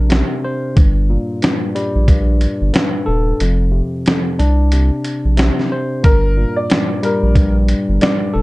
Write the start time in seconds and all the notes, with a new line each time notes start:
Already playing: A#1 C3 D4 A#4
0.10 C3, snare, closed hi-hat
0.44 C5
0.75 G1 G2, kick, closed hi-hat
1.10 A#2
1.42 G2, snare, closed hi-hat
1.75 G3, closed hi-hat
1.95 A#1
2.08 G2, kick, closed hi-hat
2.41 closed hi-hat
2.61 G1
2.73 G2, snare, closed hi-hat
3.06 D#1 A4
3.40 F1 F2, closed hi-hat
3.71 C3
4.06 F2, snare, closed hi-hat
4.39 C2 D4, closed hi-hat
4.72 C3, closed hi-hat
5.04 closed hi-hat
5.25 A#1
5.37 C3, snare, closed hi-hat
5.59 snare
5.72 C5
6.03 G1 G2 A#4, kick, closed hi-hat
6.37 A#2
6.56 D5
6.70 G2, snare, closed hi-hat
7.03 G3 A#4, closed hi-hat
7.23 A#1
7.35 G2, kick, closed hi-hat
7.68 closed hi-hat
7.89 G1
8.01 G2 D5, snare, closed hi-hat
8.34 D#1 A4